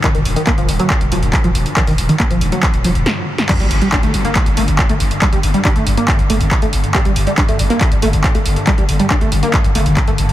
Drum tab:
CC |----------------|----------------|x---------------|----------------|
HH |xxoxxxoxxxoxxxox|xooxxxoxxxox----|xxoxxxoxxxoxxxox|xxoxxxoxxxoxxxox|
CP |x---x---x---x---|x---x---x-------|x---x---x---x---|x---x---x---x---|
SD |----------------|------------o--o|----------------|----------------|
BD |o---o---o---o---|o---o---o-------|o---o---o---o---|o---o---o---o---|

CC |----------------|----------------|
HH |xxoxxxoxxxoxxxox|xxoxxxoxxxoxxxox|
CP |x---x---x---x---|x---x---x---x---|
SD |----------------|----------------|
BD |o---o---o---o---|o---o---o---o---|